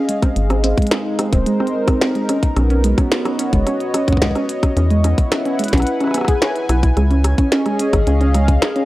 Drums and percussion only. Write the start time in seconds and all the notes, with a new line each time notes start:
0.09 closed hi-hat
0.22 kick, cross-stick, closed hi-hat
0.36 closed hi-hat
0.50 cross-stick, closed hi-hat
0.64 closed hi-hat
0.78 kick, closed hi-hat
0.82 closed hi-hat
0.87 closed hi-hat
0.91 cross-stick, snare, closed hi-hat
1.19 cross-stick, closed hi-hat
1.33 kick, closed hi-hat
1.46 closed hi-hat
1.60 cross-stick
1.67 closed hi-hat
1.88 kick, cross-stick, closed hi-hat
2.01 snare, closed hi-hat
2.15 closed hi-hat
2.29 cross-stick, closed hi-hat
2.43 kick, closed hi-hat
2.57 cross-stick, closed hi-hat
2.70 closed hi-hat
2.84 closed hi-hat
2.98 kick, cross-stick, closed hi-hat
3.12 snare, closed hi-hat
3.25 cross-stick, closed hi-hat
3.39 closed hi-hat
3.53 kick, closed hi-hat
3.67 cross-stick, closed hi-hat
3.80 closed hi-hat
3.94 cross-stick, closed hi-hat
4.08 kick, closed hi-hat
4.12 kick
4.17 kick
4.22 kick, snare, closed hi-hat
4.26 kick
4.31 kick
4.35 cross-stick, closed hi-hat
4.49 closed hi-hat
4.63 kick, cross-stick, closed hi-hat
4.77 closed hi-hat
4.90 closed hi-hat
5.04 cross-stick, closed hi-hat
5.18 kick, closed hi-hat
5.32 cross-stick, snare, closed hi-hat
5.45 closed hi-hat
5.59 closed hi-hat
5.64 closed hi-hat
5.68 closed hi-hat
5.73 kick, snare, closed hi-hat
5.78 cross-stick, closed hi-hat
5.82 closed hi-hat
5.87 closed hi-hat
6.00 cross-stick, closed hi-hat
6.04 cross-stick
6.07 cross-stick
6.11 cross-stick
6.14 cross-stick, closed hi-hat
6.18 cross-stick
6.21 cross-stick
6.25 kick, cross-stick, closed hi-hat
6.42 cross-stick, snare, closed hi-hat
6.56 closed hi-hat
6.69 cross-stick, closed hi-hat
6.83 kick, closed hi-hat
6.97 cross-stick, closed hi-hat
7.11 closed hi-hat
7.24 cross-stick, closed hi-hat
7.38 kick, closed hi-hat
7.52 snare, closed hi-hat
7.66 cross-stick, closed hi-hat
7.79 closed hi-hat
7.93 kick, cross-stick, closed hi-hat
8.07 closed hi-hat
8.21 closed hi-hat
8.35 cross-stick, closed hi-hat
8.48 kick, closed hi-hat
8.62 cross-stick, snare, closed hi-hat
8.76 closed hi-hat